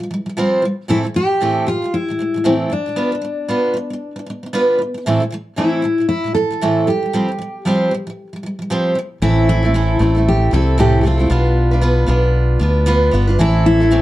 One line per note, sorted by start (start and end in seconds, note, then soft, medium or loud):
0.00 0.09 F3 soft
0.00 0.12 G3 soft
0.11 0.25 F3 medium
0.11 0.28 G3 medium
0.26 0.36 F3 soft
0.26 0.36 G3 medium
0.37 0.61 F3 medium
0.37 0.63 G3 medium
0.37 0.63 C4 medium
0.37 0.64 F4 medium
0.37 0.64 C5 medium
0.62 0.84 F3 medium
0.62 0.86 G3 medium
0.88 1.02 A2 medium
0.88 1.04 E3 medium
0.88 1.05 A3 medium
0.88 1.05 C4 medium
0.88 1.05 E4 medium
0.88 0.97 E4 medium
0.88 1.05 A4 medium
1.03 1.13 A2 soft
1.03 1.15 E3 soft
1.03 1.16 A3 soft
1.14 1.36 A2 soft
1.14 1.37 E3 medium
1.14 1.38 A3 medium
1.14 1.67 G4 loud
1.41 1.65 A2 medium
1.41 1.67 E3 medium
1.41 1.67 A3 medium
1.41 1.67 C4 medium
1.41 1.68 E4 medium
1.41 1.68 A4 medium
1.67 1.81 A2 medium
1.67 1.83 E3 medium
1.67 1.84 A3 medium
1.67 1.94 F4 medium
1.82 2.02 A2 soft
1.82 2.03 E3 soft
1.82 2.04 A3 soft
1.94 2.45 E4 medium
2.09 2.18 A2 soft
2.09 2.19 E3 soft
2.09 2.20 A3 soft
2.19 2.33 A2 soft
2.19 2.35 E3 medium
2.19 2.36 A3 medium
2.34 2.43 A2 soft
2.34 2.43 E3 soft
2.34 2.44 A3 soft
2.44 2.69 A2 medium
2.44 2.70 E3 medium
2.44 2.71 A3 medium
2.44 2.71 C4 medium
2.44 2.53 C4 medium
2.44 2.71 E4 medium
2.44 2.72 A4 medium
2.70 2.85 A2 medium
2.70 2.86 E3 medium
2.70 2.87 A3 medium
2.70 4.24 D4 medium
2.86 2.97 A2 soft
2.86 2.98 E3 soft
2.86 2.96 A3 soft
2.96 3.11 B3 medium
2.96 3.13 D4 medium
2.96 3.13 F4 medium
2.96 3.13 B4 medium
3.15 3.23 D4 medium
3.22 3.44 B3 medium
3.22 3.46 D4 medium
3.48 3.72 B3 medium
3.48 3.75 D4 medium
3.48 3.75 F4 medium
3.48 3.76 B4 medium
3.74 3.89 B3 medium
3.74 3.92 D4 medium
3.90 4.10 B3 soft
3.90 4.12 D4 medium
4.16 4.25 B3 soft
4.16 4.28 D4 medium
4.26 4.42 B3 medium
4.26 4.44 D4 medium
4.43 4.52 B3 soft
4.43 4.53 D4 soft
4.53 4.77 B3 medium
4.53 4.80 D4 medium
4.53 4.80 F4 medium
4.53 4.80 B4 medium
4.79 4.93 B3 medium
4.79 4.96 D4 medium
4.94 5.05 B3 soft
4.94 5.07 D4 soft
5.06 5.19 A2 medium
5.06 5.21 E3 medium
5.06 5.22 A3 medium
5.06 5.22 C4 medium
5.06 5.22 E4 medium
5.06 5.22 A4 medium
5.20 5.29 A2 medium
5.20 5.31 E3 medium
5.20 5.33 A3 medium
5.30 5.53 A2 medium
5.30 5.54 E3 medium
5.30 5.54 A3 medium
5.56 5.81 A2 medium
5.56 5.83 E3 medium
5.56 5.83 A3 medium
5.56 5.84 C4 medium
5.56 6.06 E4 medium
5.56 5.84 E4 medium
5.56 5.84 A4 medium
5.82 5.97 A2 medium
5.82 5.99 E3 medium
5.82 6.00 A3 medium
5.98 6.18 A2 soft
5.98 6.19 E3 soft
5.98 6.20 A3 soft
6.09 6.34 E4 medium
6.24 6.33 A2 soft
6.24 6.35 E3 soft
6.24 6.37 A3 soft
6.34 6.49 A2 soft
6.34 6.51 E3 medium
6.34 6.52 A3 soft
6.34 6.87 A4 medium
6.51 6.60 A2 soft
6.51 6.61 E3 soft
6.51 6.61 A3 soft
6.61 6.87 A2 medium
6.61 6.87 E3 medium
6.61 6.88 A3 medium
6.61 6.88 C4 medium
6.61 6.88 E4 medium
6.61 6.88 A4 medium
6.87 7.01 F3 medium
6.87 7.04 G3 medium
6.87 7.88 G4 medium
7.03 7.12 F3 soft
7.03 7.13 G3 soft
7.13 7.27 F3 medium
7.13 7.29 G3 medium
7.13 7.30 C4 medium
7.13 7.30 G4 medium
7.13 7.30 C5 medium
7.28 7.37 F3 soft
7.39 7.61 F3 medium
7.39 7.62 G3 medium
7.65 7.90 F3 medium
7.65 7.92 G3 medium
7.65 7.92 C4 medium
7.65 7.92 G4 medium
7.65 7.93 C5 medium
7.91 8.06 F3 medium
7.91 8.09 G3 medium
8.07 8.27 F3 medium
8.07 8.28 G3 medium
8.33 8.42 F3 soft
8.33 8.45 G3 soft
8.43 8.58 F3 medium
8.43 8.61 G3 medium
8.59 8.69 F3 soft
8.59 8.69 G3 medium
8.70 8.94 F3 medium
8.70 8.96 G3 medium
8.70 8.97 C4 medium
8.70 8.97 G4 medium
8.70 8.97 C5 medium
8.95 9.17 F3 medium
8.95 9.19 G3 medium
9.22 9.96 A1 medium
9.22 9.63 A2 medium
9.22 9.64 E3 medium
9.22 9.64 A3 medium
9.22 9.64 C4 medium
9.22 9.48 E4 loud
9.22 9.63 E4 medium
9.22 9.61 A4 medium
9.49 9.97 E4 medium
9.63 9.74 A3 soft
9.63 9.74 C4 soft
9.63 9.74 E4 soft
9.63 9.74 A4 soft
9.74 10.00 A2 medium
9.74 10.00 E3 medium
9.74 9.98 A3 medium
9.74 9.99 C4 medium
9.74 10.00 E4 medium
9.74 10.01 A4 medium
9.99 10.48 A1 medium
9.99 10.15 A3 medium
9.99 10.16 C4 medium
9.99 10.15 E4 medium
9.99 10.14 A4 medium
10.15 10.50 A3 soft
10.15 10.51 C4 soft
10.15 10.52 E4 soft
10.15 10.52 A4 soft
10.28 10.54 G4 medium
10.51 11.27 C2 medium
10.51 10.78 A3 medium
10.51 10.78 C4 medium
10.51 10.78 E4 medium
10.51 10.80 A4 medium
10.51 10.79 A4 medium
10.78 11.04 A2 medium
10.78 11.04 E3 medium
10.78 11.02 A3 medium
10.78 11.03 C4 medium
10.78 11.04 E4 medium
10.78 11.00 G4 medium
10.78 11.05 A4 medium
11.01 11.19 A3 medium
11.01 11.19 C4 medium
11.01 11.05 G4 medium
11.06 11.18 E4 medium
11.06 12.58 F4 medium
11.06 11.16 A4 medium
11.18 11.29 A3 soft
11.18 11.30 C4 medium
11.18 11.30 E4 soft
11.18 11.29 A4 soft
11.30 12.05 B1 medium
11.30 11.72 B3 medium
11.30 11.72 D4 medium
11.30 11.72 F4 medium
11.30 11.70 B4 medium
11.71 11.81 D4 soft
11.71 11.82 F4 soft
11.71 11.82 B4 medium
11.81 12.05 B3 medium
11.81 12.06 D4 medium
11.81 12.07 F4 medium
11.81 12.08 B4 medium
12.06 12.56 B1 medium
12.06 12.58 B3 medium
12.06 12.60 D4 medium
12.06 12.61 F4 medium
12.06 12.61 B4 medium
12.59 13.09 D2 medium
12.59 12.85 B3 medium
12.59 12.85 D4 medium
12.59 12.86 F4 medium
12.59 12.87 B4 medium
12.86 13.10 B3 medium
12.86 13.12 D4 medium
12.86 13.12 F4 medium
12.86 13.13 B4 medium
13.11 13.37 G1 medium
13.11 13.28 B3 medium
13.11 13.29 D4 medium
13.11 13.28 F4 medium
13.11 13.26 B4 medium
13.27 13.40 D4 soft
13.27 13.39 F4 soft
13.27 13.38 B4 soft
13.39 14.02 A1 medium
13.39 13.80 A2 medium
13.39 13.81 E3 medium
13.39 13.81 A3 medium
13.39 13.81 C4 medium
13.39 13.80 E4 medium
13.39 13.65 E4 loud
13.39 13.79 A4 medium
13.66 14.02 E4 loud
13.80 13.90 A3 soft
13.80 13.91 C4 soft
13.80 13.91 E4 medium
13.80 13.91 A4 medium
13.91 14.02 A2 medium
13.91 14.02 E3 medium
13.91 14.02 A3 medium
13.91 14.02 C4 medium
13.91 14.02 E4 medium
13.91 14.02 A4 medium